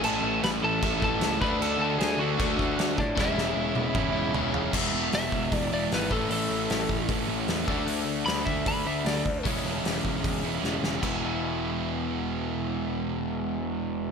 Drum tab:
CC |x-x-x-x-|x-x-x-x-|--------|x-------|
HH |--------|--------|--------|--o-o-o-|
SD |--o---o-|--o---o-|oo------|--o---o-|
T1 |--------|--------|---o----|--------|
T2 |--------|--------|----o---|--------|
FT |--------|--------|------oo|--------|
BD |----oo-o|----oo-o|o---o---|o--oo--o|

CC |--------|--------|--------|x-------|
HH |o-o-o-o-|o-o-o-o-|o-o-o---|--------|
SD |--o---o-|--o---o-|--o---oo|--------|
T1 |--------|--------|--------|--------|
T2 |--------|--------|--------|--------|
FT |--------|--------|--------|--------|
BD |---oo--o|---oo--o|o--oo---|o-------|

CC |--------|
HH |--------|
SD |--------|
T1 |--------|
T2 |--------|
FT |--------|
BD |--------|